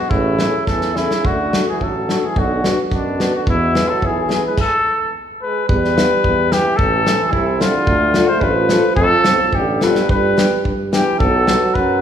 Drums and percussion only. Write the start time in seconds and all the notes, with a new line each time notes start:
0.11 kick
0.39 snare
0.67 kick, snare
0.81 snare
0.96 snare
1.11 snare
1.25 kick
1.53 snare
1.81 kick
2.09 snare
2.36 kick
2.64 snare
2.91 kick, snare
3.20 snare
3.47 kick
3.75 snare
4.02 kick
4.30 snare
4.58 kick, crash
5.69 kick
5.85 snare
5.98 snare, hi-hat pedal
6.24 kick
6.52 snare, hi-hat pedal
6.79 kick
7.07 snare, hi-hat pedal
7.33 kick
7.61 snare, hi-hat pedal
7.87 kick
8.14 snare, hi-hat pedal
8.41 kick
8.69 snare, hi-hat pedal
8.96 kick
9.24 snare, hi-hat pedal
9.53 kick
9.81 snare, hi-hat pedal
9.95 snare
10.09 kick
10.38 snare, hi-hat pedal
10.65 kick
10.93 snare, hi-hat pedal
11.20 kick
11.47 snare, hi-hat pedal
11.75 kick